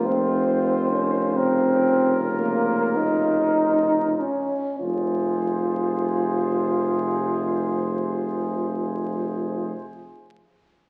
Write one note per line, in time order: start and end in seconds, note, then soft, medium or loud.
0.00 4.29 F1 soft
0.05 1.36 D#3 soft
0.05 0.90 C4 medium
0.05 1.33 F4 soft
0.05 1.39 C5 soft
0.91 1.38 C#4 medium
1.34 4.32 C#3 soft
1.34 2.21 C4 medium
1.34 4.29 F4 soft
1.34 4.33 A#4 soft
2.38 2.97 A#3 medium
2.96 4.21 D#4 medium
4.20 4.79 C#4 soft
4.79 9.73 F1 soft
4.79 9.72 C3 soft
4.79 9.73 F4 soft
4.79 9.72 G#4 soft
4.79 9.72 C5 soft